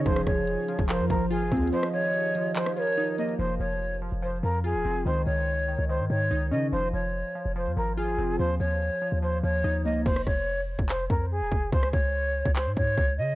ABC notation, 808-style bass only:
X:1
M:4/4
L:1/16
Q:1/4=144
K:Fm
V:1 name="808-style bass" clef=bass
F,,,2 F,,,3 z2 F,,,2 F,, A,,,3 G,,, E,,2 | z16 | F,,,2 F,,,4- F,,, F,,,3 F,,3 E,,, F,,,2 | D,,2 D,,4- D,, D,,2 A,, A,,2 D,,2 D,2 |
F,,,2 F,,,3 z2 F,,,2 F,, A,,,3 G,,, F,,,2 | E,,2 E,,3 z2 E,,3 E,,2 E,,2 D,,2 | F,,,2 F,,,4- F,,, F,,,3 F,,3 E,,, F,,,2 | D,,2 D,,4- D,, D,,2 A,, A,,2 D,,2 D,2 |]